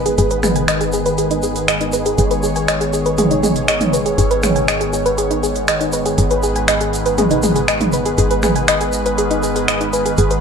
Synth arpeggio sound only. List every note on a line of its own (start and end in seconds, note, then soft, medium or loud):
0.06 0.11 G#4 medium
0.18 0.23 G#4 loud
0.31 0.34 B4 medium
0.43 0.48 G#4 medium
0.56 0.59 G#5 medium
0.68 0.73 D#5 loud
0.81 0.88 G#4 medium
0.93 1.01 G#4 medium
1.06 1.09 B4 loud
1.18 1.23 G#4 loud
1.31 1.34 D#4 loud
1.43 1.48 G#4 medium
1.68 1.73 D#5 loud
1.81 1.86 D#4 medium
1.93 2.01 B4 medium
2.06 2.11 G#4 loud
2.18 2.23 G#4 loud
2.31 2.34 B4 medium
2.43 2.48 G#4 medium
2.56 2.59 G#5 medium
2.68 2.73 D#5 loud
2.81 2.88 G#4 medium
2.93 3.01 G#4 medium
3.06 3.09 B4 loud
3.18 3.23 G#4 loud
3.31 3.34 D#4 medium
3.43 3.48 G#4 medium
3.68 3.73 D#5 loud
3.81 3.86 D#4 medium
3.93 4.01 B4 medium
4.06 4.11 G#4 medium
4.18 4.23 G#4 loud
4.31 4.34 B4 medium
4.43 4.48 G#4 medium
4.56 4.59 G#5 medium
4.68 4.73 D#5 loud
4.81 4.88 G#4 medium
4.93 5.01 G#4 medium
5.06 5.09 B4 loud
5.18 5.23 G#4 loud
5.31 5.34 D#4 loud
5.43 5.48 G#4 medium
5.68 5.73 D#5 loud
5.81 5.86 D#4 medium
5.93 6.01 B4 medium
6.06 6.11 G#4 loud
6.18 6.23 G#4 loud
6.31 6.34 B4 medium
6.43 6.48 G#4 medium
6.56 6.59 G#5 medium
6.68 6.73 D#5 loud
6.81 6.88 G#4 medium
7.06 7.09 B4 loud
7.18 7.23 G#4 loud
7.31 7.34 D#4 loud
7.43 7.48 G#4 medium
7.56 7.63 G#4 medium
7.68 7.73 D#5 loud
7.81 7.86 D#4 medium
7.93 8.01 B4 medium
8.06 8.11 G#4 loud
8.18 8.23 G#4 loud
8.31 8.34 B4 medium
8.43 8.48 G#4 medium
8.56 8.59 G#5 medium
8.68 8.73 D#5 loud
8.81 8.88 G#4 medium
9.06 9.09 B4 loud
9.18 9.23 G#4 loud
9.31 9.34 D#4 loud
9.43 9.48 G#4 medium
9.56 9.63 G#4 medium
9.68 9.73 D#5 loud
9.81 9.86 D#4 medium
9.93 10.01 B4 medium
10.06 10.11 G#4 loud
10.18 10.23 G#4 loud
10.31 10.34 B4 medium